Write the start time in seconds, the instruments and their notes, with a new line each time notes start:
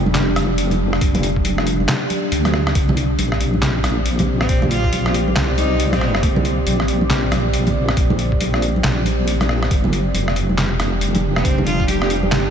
Already playing: wobble bass F1, ambient pad G3 D4 G4
0.06 high conga
0.14 snare, clap, closed hi-hat
0.36 cross-stick, closed hi-hat, high conga
0.58 closed hi-hat
0.70 closed hi-hat, high conga, low conga
0.93 cross-stick
1.01 wobble bass F1, kick, closed hi-hat
1.15 closed hi-hat, high conga, low conga
1.23 closed hi-hat
1.36 kick
1.45 closed hi-hat, high conga
1.58 cross-stick
1.67 closed hi-hat
1.80 high conga
1.88 snare, clap, closed hi-hat
2.10 closed hi-hat, high conga
2.32 wobble bass D2, closed hi-hat
2.45 cross-stick, closed hi-hat, high conga
2.54 cross-stick
2.67 cross-stick
2.75 wobble bass C2, ambient pad C4 G4 D5, kick, closed hi-hat
2.89 high conga, low conga
2.97 closed hi-hat
3.18 wobble bass A#1, closed hi-hat, high conga
3.32 cross-stick
3.41 closed hi-hat
3.54 high conga
3.62 snare, clap, closed hi-hat
3.84 cross-stick, closed hi-hat, high conga
4.06 closed hi-hat
4.19 closed hi-hat, high conga, low conga
4.41 cello C4, cross-stick
4.49 wobble bass A#1, kick, closed hi-hat
4.62 high conga, low conga
4.71 cello F4, closed hi-hat
4.84 kick
4.93 closed hi-hat, high conga
5.06 cross-stick
5.14 closed hi-hat
5.28 high conga
5.36 wobble bass C2, snare, clap, closed hi-hat
5.57 cello D#4, closed hi-hat, high conga
5.80 closed hi-hat
5.92 cello C4, cross-stick, closed hi-hat, high conga
6.01 cross-stick
6.15 cross-stick
6.23 wobble bass C2, kick, closed hi-hat
6.36 high conga, low conga
6.45 closed hi-hat
6.67 wobble bass A#1, closed hi-hat, high conga
6.80 cross-stick
6.88 closed hi-hat
7.01 high conga
7.10 snare, clap, closed hi-hat
7.31 cross-stick, closed hi-hat, high conga
7.54 closed hi-hat
7.67 closed hi-hat, high conga, low conga
7.89 cross-stick
7.97 wobble bass A#1, kick, closed hi-hat
8.10 high conga, low conga
8.19 closed hi-hat
8.32 kick
8.41 closed hi-hat, high conga
8.54 cross-stick
8.62 closed hi-hat
8.76 high conga
8.84 wobble bass A#1, snare, clap, closed hi-hat
9.05 closed hi-hat, high conga
9.28 closed hi-hat
9.41 cross-stick, closed hi-hat, high conga
9.49 cross-stick
9.63 cross-stick
9.71 wobble bass G1, ambient pad G3 D4 G4, kick, closed hi-hat
9.84 high conga, low conga
9.93 closed hi-hat
10.14 wobble bass F1, closed hi-hat, high conga
10.28 cross-stick
10.36 closed hi-hat
10.49 high conga
10.58 snare, clap, closed hi-hat
10.80 cross-stick, closed hi-hat, high conga
11.01 closed hi-hat
11.15 closed hi-hat, high conga, low conga
11.36 cello C4, cross-stick
11.45 wobble bass F1, kick, closed hi-hat
11.58 high conga, low conga
11.67 cello F4, closed hi-hat
11.80 kick
11.88 cello G4, closed hi-hat, high conga
12.02 cello G4, cross-stick
12.10 closed hi-hat
12.23 high conga
12.32 wobble bass G1, snare, clap, closed hi-hat